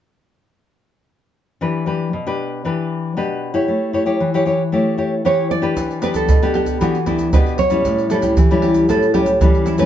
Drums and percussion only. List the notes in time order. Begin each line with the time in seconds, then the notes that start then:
5.77 pandeiro, shaker, surdo
5.91 pandeiro, shaker
6.02 pandeiro, shaker
6.14 pandeiro, shaker, surdo
6.29 pandeiro, shaker, surdo
6.43 pandeiro, shaker
6.54 pandeiro
6.66 pandeiro, shaker, surdo
6.81 pandeiro, shaker, surdo
6.95 pandeiro, shaker
7.06 pandeiro, surdo
7.19 pandeiro, shaker, surdo
7.33 pandeiro, shaker, surdo
7.46 pandeiro, shaker
7.58 pandeiro, surdo
7.70 pandeiro, shaker
7.85 pandeiro, shaker, surdo
7.98 pandeiro, shaker
8.10 pandeiro, shaker
8.22 pandeiro, shaker, surdo
8.37 pandeiro, shaker, surdo
8.51 pandeiro, shaker
8.62 pandeiro
8.74 pandeiro, shaker, surdo
8.89 pandeiro, shaker, surdo
9.03 pandeiro, shaker
9.14 pandeiro, surdo
9.26 pandeiro, shaker, surdo
9.41 pandeiro, shaker, surdo
9.55 pandeiro, shaker
9.66 pandeiro, shaker
9.78 pandeiro, shaker